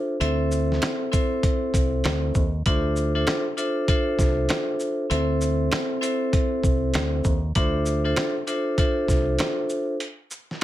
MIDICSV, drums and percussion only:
0, 0, Header, 1, 2, 480
1, 0, Start_track
1, 0, Key_signature, -1, "minor"
1, 0, Tempo, 612245
1, 165, Time_signature, 4, 2, 24, 8
1, 8339, End_track
2, 0, Start_track
2, 0, Title_t, "Drums"
2, 164, Note_on_c, 9, 42, 78
2, 242, Note_off_c, 9, 42, 0
2, 403, Note_on_c, 9, 82, 60
2, 481, Note_off_c, 9, 82, 0
2, 564, Note_on_c, 9, 38, 35
2, 641, Note_on_c, 9, 26, 62
2, 642, Note_off_c, 9, 38, 0
2, 643, Note_on_c, 9, 42, 80
2, 648, Note_on_c, 9, 38, 122
2, 651, Note_on_c, 9, 40, 98
2, 720, Note_off_c, 9, 26, 0
2, 721, Note_off_c, 9, 42, 0
2, 727, Note_off_c, 9, 38, 0
2, 729, Note_off_c, 9, 40, 0
2, 886, Note_on_c, 9, 42, 57
2, 886, Note_on_c, 9, 82, 59
2, 889, Note_on_c, 9, 36, 90
2, 965, Note_off_c, 9, 42, 0
2, 965, Note_off_c, 9, 82, 0
2, 967, Note_off_c, 9, 36, 0
2, 1123, Note_on_c, 9, 36, 91
2, 1124, Note_on_c, 9, 42, 88
2, 1202, Note_off_c, 9, 36, 0
2, 1202, Note_off_c, 9, 42, 0
2, 1363, Note_on_c, 9, 36, 86
2, 1368, Note_on_c, 9, 42, 57
2, 1368, Note_on_c, 9, 82, 61
2, 1441, Note_off_c, 9, 36, 0
2, 1446, Note_off_c, 9, 42, 0
2, 1446, Note_off_c, 9, 82, 0
2, 1599, Note_on_c, 9, 42, 74
2, 1605, Note_on_c, 9, 26, 64
2, 1611, Note_on_c, 9, 38, 117
2, 1613, Note_on_c, 9, 40, 95
2, 1677, Note_off_c, 9, 42, 0
2, 1684, Note_off_c, 9, 26, 0
2, 1689, Note_off_c, 9, 38, 0
2, 1692, Note_off_c, 9, 40, 0
2, 1840, Note_on_c, 9, 82, 52
2, 1843, Note_on_c, 9, 36, 93
2, 1918, Note_off_c, 9, 82, 0
2, 1922, Note_off_c, 9, 36, 0
2, 2083, Note_on_c, 9, 42, 80
2, 2085, Note_on_c, 9, 36, 102
2, 2161, Note_off_c, 9, 42, 0
2, 2164, Note_off_c, 9, 36, 0
2, 2322, Note_on_c, 9, 82, 57
2, 2400, Note_off_c, 9, 82, 0
2, 2562, Note_on_c, 9, 42, 77
2, 2563, Note_on_c, 9, 26, 64
2, 2567, Note_on_c, 9, 38, 126
2, 2569, Note_on_c, 9, 40, 99
2, 2640, Note_off_c, 9, 42, 0
2, 2642, Note_off_c, 9, 26, 0
2, 2646, Note_off_c, 9, 38, 0
2, 2648, Note_off_c, 9, 40, 0
2, 2806, Note_on_c, 9, 42, 56
2, 2806, Note_on_c, 9, 82, 58
2, 2884, Note_off_c, 9, 42, 0
2, 2884, Note_off_c, 9, 82, 0
2, 3043, Note_on_c, 9, 36, 91
2, 3043, Note_on_c, 9, 42, 93
2, 3122, Note_off_c, 9, 36, 0
2, 3122, Note_off_c, 9, 42, 0
2, 3282, Note_on_c, 9, 36, 86
2, 3287, Note_on_c, 9, 38, 38
2, 3287, Note_on_c, 9, 82, 57
2, 3361, Note_off_c, 9, 36, 0
2, 3365, Note_off_c, 9, 38, 0
2, 3366, Note_off_c, 9, 82, 0
2, 3518, Note_on_c, 9, 42, 78
2, 3526, Note_on_c, 9, 26, 66
2, 3530, Note_on_c, 9, 38, 114
2, 3533, Note_on_c, 9, 40, 92
2, 3597, Note_off_c, 9, 42, 0
2, 3604, Note_off_c, 9, 26, 0
2, 3609, Note_off_c, 9, 38, 0
2, 3611, Note_off_c, 9, 40, 0
2, 3761, Note_on_c, 9, 82, 53
2, 3839, Note_off_c, 9, 82, 0
2, 4005, Note_on_c, 9, 42, 80
2, 4083, Note_off_c, 9, 42, 0
2, 4243, Note_on_c, 9, 82, 57
2, 4322, Note_off_c, 9, 82, 0
2, 4481, Note_on_c, 9, 26, 63
2, 4483, Note_on_c, 9, 42, 78
2, 4488, Note_on_c, 9, 38, 126
2, 4491, Note_on_c, 9, 40, 100
2, 4559, Note_off_c, 9, 26, 0
2, 4561, Note_off_c, 9, 42, 0
2, 4567, Note_off_c, 9, 38, 0
2, 4569, Note_off_c, 9, 40, 0
2, 4727, Note_on_c, 9, 42, 61
2, 4727, Note_on_c, 9, 82, 59
2, 4805, Note_off_c, 9, 42, 0
2, 4805, Note_off_c, 9, 82, 0
2, 4964, Note_on_c, 9, 36, 91
2, 4964, Note_on_c, 9, 42, 90
2, 5042, Note_off_c, 9, 36, 0
2, 5042, Note_off_c, 9, 42, 0
2, 5202, Note_on_c, 9, 36, 89
2, 5207, Note_on_c, 9, 82, 58
2, 5280, Note_off_c, 9, 36, 0
2, 5285, Note_off_c, 9, 82, 0
2, 5438, Note_on_c, 9, 42, 77
2, 5444, Note_on_c, 9, 26, 67
2, 5450, Note_on_c, 9, 38, 115
2, 5452, Note_on_c, 9, 40, 97
2, 5516, Note_off_c, 9, 42, 0
2, 5523, Note_off_c, 9, 26, 0
2, 5528, Note_off_c, 9, 38, 0
2, 5530, Note_off_c, 9, 40, 0
2, 5678, Note_on_c, 9, 82, 55
2, 5683, Note_on_c, 9, 36, 88
2, 5757, Note_off_c, 9, 82, 0
2, 5761, Note_off_c, 9, 36, 0
2, 5921, Note_on_c, 9, 42, 83
2, 5924, Note_on_c, 9, 36, 102
2, 6000, Note_off_c, 9, 42, 0
2, 6003, Note_off_c, 9, 36, 0
2, 6161, Note_on_c, 9, 82, 60
2, 6239, Note_off_c, 9, 82, 0
2, 6400, Note_on_c, 9, 42, 76
2, 6401, Note_on_c, 9, 26, 65
2, 6406, Note_on_c, 9, 38, 127
2, 6408, Note_on_c, 9, 40, 95
2, 6479, Note_off_c, 9, 26, 0
2, 6479, Note_off_c, 9, 42, 0
2, 6485, Note_off_c, 9, 38, 0
2, 6487, Note_off_c, 9, 40, 0
2, 6644, Note_on_c, 9, 42, 58
2, 6644, Note_on_c, 9, 82, 60
2, 6723, Note_off_c, 9, 42, 0
2, 6723, Note_off_c, 9, 82, 0
2, 6882, Note_on_c, 9, 42, 89
2, 6883, Note_on_c, 9, 36, 90
2, 6961, Note_off_c, 9, 36, 0
2, 6961, Note_off_c, 9, 42, 0
2, 7122, Note_on_c, 9, 36, 88
2, 7127, Note_on_c, 9, 38, 37
2, 7127, Note_on_c, 9, 82, 61
2, 7201, Note_off_c, 9, 36, 0
2, 7205, Note_off_c, 9, 38, 0
2, 7206, Note_off_c, 9, 82, 0
2, 7358, Note_on_c, 9, 42, 79
2, 7365, Note_on_c, 9, 26, 67
2, 7370, Note_on_c, 9, 38, 114
2, 7373, Note_on_c, 9, 40, 95
2, 7436, Note_off_c, 9, 42, 0
2, 7443, Note_off_c, 9, 26, 0
2, 7449, Note_off_c, 9, 38, 0
2, 7451, Note_off_c, 9, 40, 0
2, 7600, Note_on_c, 9, 82, 54
2, 7679, Note_off_c, 9, 82, 0
2, 7842, Note_on_c, 9, 42, 81
2, 7920, Note_off_c, 9, 42, 0
2, 8082, Note_on_c, 9, 82, 59
2, 8160, Note_off_c, 9, 82, 0
2, 8241, Note_on_c, 9, 38, 37
2, 8319, Note_off_c, 9, 38, 0
2, 8339, End_track
0, 0, End_of_file